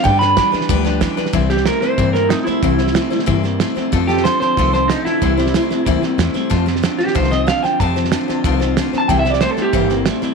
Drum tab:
HH |----p-------p---|----p-------p---|----p-------p---|----p-------p---|
SD |o-o-o-ooo-o-o-oo|o-ooo-o-o-o-o-o-|o-ooo-ooo-o-o-o-|o-ooo-o-o-o-o-o-|
BD |o---o---o---o---|o-------o-------|o-------o-------|o-------o-------|

HH |----p-------p---|----p-------p---|----p-------p---|----p-------p---|
SD |o-ooo-o-o-o-o-o-|o-ooo-ooooo-o-o-|o-ooo-o-o-o-o-o-|o-ooo-o-o-o-o-o-|
BD |o-------o-------|o-------o-------|o-------o-------|o-------o-------|